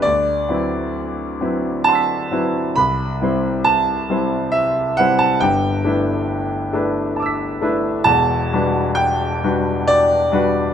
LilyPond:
\new Staff \with { instrumentName = "Grand piano" } { \time 3/4 \key g \major \tempo 4 = 67 << { d''4. r8 <fis'' a'' c''' e''' b'''>4 | b''4 a''4 e''8 fis''16 a''16 | g''4. r8 <a'' d''' e''' b'''>4 | a''4 g''4 d''4 | } \\ { d,8 <fis c' e' b'>4 <fis c' e' b'>4 <fis c' e' b'>8 | c,8 <g c' e' c''>4 <g c' e' c''>4 <g c' e' c''>8 | <g,, g,>8 <a d' e' b'>4 <a d' e' b'>4 <a d' e' b'>8 | <e,, e,>8 <g d' fis' b'>4 <g d' fis' b'>4 <g d' fis' b'>8 | } >> }